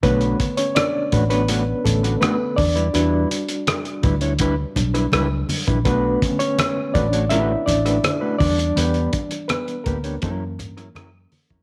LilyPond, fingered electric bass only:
\new Staff \with { instrumentName = "Fingered electric bass" } { \clef bass \time 4/4 \key b \minor \tempo 4 = 82 b,,8 r4 a,,4 a,,8 r8 e,8 | e,8 r4 d,4 b,,8 cis,8 r16 ais,,16 | b,,8 r4 a,,4 a,,8 r8 e,8 | e,8 r4 d,8 fis,8 g,8 fis,8 r16 eis,16 | }